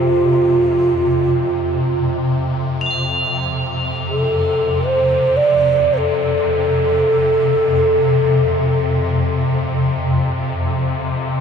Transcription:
0.00 2.57 F2 medium
0.00 2.56 C3 medium
0.00 2.16 F4 medium
0.00 3.08 G7 medium
2.58 11.40 F2 medium
2.58 11.40 C3 medium
2.81 11.40 F7 medium
2.86 11.40 A7 soft
2.91 11.40 C8 soft
4.09 4.88 A4 medium
4.86 5.38 C5 medium
5.36 5.95 D5 medium
5.93 9.16 A4 medium
5.93 5.98 C5 medium

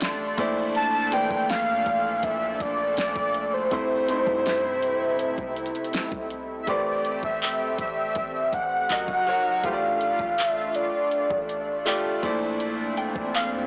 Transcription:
0.00 0.34 A1 loud
0.00 0.38 A3 medium
0.00 6.64 A3 medium
0.00 3.67 D4 medium
0.00 0.35 F4 medium
0.00 0.40 F4 medium
0.00 0.40 G4 medium
0.00 0.40 F5 medium
0.00 0.47 G5 medium
0.00 0.38 C6 loud
0.00 0.71 C6 medium
0.00 snare loud
0.00 closed hi-hat medium
0.38 1.27 A#1 loud
0.38 1.07 A#2 medium
0.38 3.68 A#2 medium
0.38 1.08 A3 medium
0.38 1.08 E4 medium
0.38 1.08 C5 medium
0.38 1.09 D5 loud
0.38 kick loud
0.38 closed hi-hat medium
0.75 1.15 A5 loud
0.75 closed hi-hat medium
1.12 2.51 A#2 medium
1.12 2.52 E3 medium
1.12 2.52 A3 medium
1.12 2.52 C5 medium
1.12 2.53 D5 medium
1.12 1.50 G5 loud
1.12 closed hi-hat medium
1.31 1.70 A#1 loud
1.31 kick medium
1.49 2.26 F5 loud
1.49 snare loud
1.49 closed hi-hat medium
1.68 1.86 F2 loud
1.86 2.22 A#1 loud
1.86 kick loud
1.86 closed hi-hat medium
2.23 2.59 A#1 loud
2.23 2.63 E5 loud
2.23 kick medium
2.23 closed hi-hat medium
2.60 2.96 A#1 loud
2.60 2.98 D5 loud
2.60 kick loud
2.60 closed hi-hat medium
2.97 3.15 A#1 loud
2.97 3.55 D5 loud
2.97 snare loud
2.97 closed hi-hat medium
3.16 3.69 A#1 loud
3.16 kick medium
3.34 closed hi-hat medium
3.54 5.94 C5 medium
3.71 4.25 C2 loud
3.71 4.06 C3 medium
3.71 6.65 C3 medium
3.71 4.06 A3 medium
3.71 6.65 E4 medium
3.71 4.07 E4 medium
3.71 4.07 C5 medium
3.71 kick loud
3.71 closed hi-hat medium
4.08 5.47 C3 medium
4.08 5.48 A3 medium
4.08 4.15 D#4 medium
4.08 5.49 C5 medium
4.08 closed hi-hat medium
4.16 5.52 E4 medium
4.27 5.34 G2 loud
4.27 kick medium
4.46 snare loud
4.46 closed hi-hat medium
4.82 closed hi-hat medium
5.19 closed hi-hat medium
5.38 5.74 C2 loud
5.38 kick medium
5.56 closed hi-hat medium
5.66 closed hi-hat medium
5.75 closed hi-hat medium
5.84 closed hi-hat soft
5.93 snare loud
5.93 closed hi-hat medium
6.12 6.65 C2 loud
6.12 kick loud
6.30 closed hi-hat medium
6.61 6.70 E5 medium
6.67 7.21 A1 loud
6.67 8.07 A3 medium
6.67 8.88 A3 medium
6.67 8.88 C4 medium
6.67 8.88 G4 medium
6.67 8.07 G4 medium
6.67 8.07 B4 medium
6.67 8.08 C5 medium
6.67 7.24 D5 loud
6.67 8.08 D5 medium
6.67 kick loud
6.67 closed hi-hat medium
7.05 closed hi-hat medium
7.23 7.62 A1 loud
7.23 7.76 E5 loud
7.23 kick medium
7.42 clap loud
7.42 closed hi-hat medium
7.61 7.78 C2 medium
7.78 8.14 A1 loud
7.78 8.55 E5 loud
7.78 kick medium
7.78 closed hi-hat medium
8.15 8.51 A1 loud
8.15 kick loud
8.15 closed hi-hat medium
8.53 8.88 A1 medium
8.53 9.66 F#5 loud
8.53 kick medium
8.53 closed hi-hat medium
8.89 9.08 C#2 loud
8.89 9.24 F#3 medium
8.89 9.63 F#3 medium
8.89 9.63 D#4 medium
8.89 9.25 F#4 medium
8.89 9.63 A#4 medium
8.89 9.25 A#4 medium
8.89 9.26 D#5 medium
8.89 clap loud
8.89 closed hi-hat medium
9.08 9.62 F#1 loud
9.08 kick medium
9.26 9.61 F#3 medium
9.26 9.62 F#4 medium
9.26 9.62 A#4 medium
9.26 9.63 C#5 medium
9.26 closed hi-hat medium
9.64 10.17 A1 loud
9.64 11.03 A3 medium
9.64 13.67 A3 medium
9.64 13.67 D4 medium
9.64 12.21 F4 medium
9.64 11.03 F4 medium
9.64 11.04 G4 medium
9.64 9.72 C5 medium
9.64 10.40 F5 loud
9.64 kick loud
9.64 closed hi-hat medium
9.73 11.08 D5 medium
10.01 closed hi-hat medium
10.19 10.91 A1 medium
10.19 kick medium
10.38 10.77 E5 loud
10.38 clap loud
10.38 closed hi-hat medium
10.75 11.86 D5 medium
10.75 closed hi-hat medium
11.11 closed hi-hat medium
11.30 12.19 A1 loud
11.30 kick medium
11.49 closed hi-hat medium
11.86 12.21 A3 medium
11.86 12.21 F4 medium
11.86 12.22 G4 medium
11.86 12.22 D5 medium
11.86 clap loud
11.86 closed hi-hat medium
12.23 13.12 A#1 loud
12.23 13.62 A#2 medium
12.23 13.67 A#2 medium
12.23 13.63 A3 medium
12.23 13.63 E4 medium
12.23 13.63 C5 medium
12.23 13.64 D5 loud
12.23 kick loud
12.23 closed hi-hat medium
12.60 closed hi-hat medium
12.60 swell medium
12.97 13.67 G5 soft
12.97 closed hi-hat medium
13.16 13.55 A#1 loud
13.16 kick medium
13.35 13.49 F5 medium
13.35 clap loud
13.35 closed hi-hat medium
13.53 13.67 F2 medium

